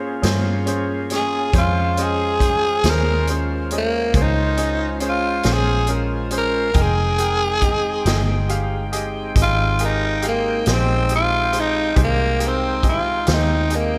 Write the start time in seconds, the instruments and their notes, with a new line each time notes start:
Already playing: fingered electric bass G#2, tonewheel organ A#3 C#4 F4 G#4, upright piano C#4 G#4 C5
0.22 fingered electric bass G2, upright piano C#4 G#4 C5, snare, closed hi-hat
0.66 upright piano C#4 G#4 C5, closed hi-hat
1.10 upright piano C#4 G#4 C#5, snare, closed hi-hat
1.16 tenor saxophone G#4
1.53 fingered electric bass F2, tonewheel organ G#3 C#4 F4 C5, upright piano C#4 G#4 C5, kick, closed hi-hat
1.58 tenor saxophone F4
1.97 upright piano C#4 G#4 D#5, closed hi-hat
2.03 tenor saxophone G#4
2.40 upright piano C#4 G#4 C5, kick, closed hi-hat
2.84 fingered electric bass D#2, upright piano C#4 G#4 C5, snare, closed hi-hat
2.90 tenor saxophone A#4
3.27 upright piano C#4 G#4 C5, closed hi-hat
3.71 upright piano C#4 G#4 D#5, closed hi-hat
3.78 tenor saxophone A#3
4.14 fingered electric bass C#2, upright piano C#4 G#4 C5, kick, closed hi-hat
4.22 tenor saxophone D#4
4.57 upright piano C#4 G#4 D#5, closed hi-hat
5.00 upright piano C#4 G#4 C5, closed hi-hat
5.09 tenor saxophone F4
5.43 fingered electric bass A#1, upright piano C#4 G#4 C5, snare, closed hi-hat
5.53 tenor saxophone G#4
5.87 upright piano C#4 G#4 A#4, closed hi-hat
6.31 upright piano C#4 G#4 C5, closed hi-hat
6.38 tenor saxophone A#4
6.74 fingered electric bass F1, tonewheel organ G#3 C4 D#4 G5, upright piano G#4 D#5 G5, kick, closed hi-hat
6.82 tenor saxophone G#4
7.18 upright piano G#4 A#4 G5, closed hi-hat
7.62 upright piano G#4 D#5 G5, kick, closed hi-hat
8.05 fingered electric bass G1, upright piano G#4 D#5 G5, snare, closed hi-hat
8.49 upright piano G4 G#4 F5, closed hi-hat
8.92 upright piano G4 G#4 D#5, closed hi-hat
9.35 fingered electric bass G#1, upright piano G4 G#4 D#5, kick, closed hi-hat
9.42 tenor saxophone F4
9.79 upright piano G4 G#4 A#4, closed hi-hat
9.85 tenor saxophone D#4
10.22 upright piano G4 G#4 F5, closed hi-hat
10.28 tenor saxophone A#3
10.66 fingered electric bass A#1, upright piano G4 G#4 C5, snare, closed hi-hat
10.73 tenor saxophone C4
11.09 upright piano G4 G#4 D#5, closed hi-hat
11.15 tenor saxophone F4
11.52 upright piano G4 G#4 C5, closed hi-hat
11.60 tenor saxophone D#4
11.95 fingered electric bass C2, tonewheel organ G#3 C4 D#4 G5, upright piano G4 G#4 C5, kick, closed hi-hat
12.03 tenor saxophone A#3
12.39 upright piano G4 G#4 A#4, closed hi-hat
12.47 tenor saxophone C4
12.82 upright piano G4 G#4 D#5, kick, closed hi-hat
12.89 tenor saxophone F4
13.26 fingered electric bass D#2, upright piano G4 G#4 C5, snare, closed hi-hat
13.33 tenor saxophone D#4
13.69 upright piano G4 G#4 D#5, closed hi-hat
13.76 tenor saxophone A#3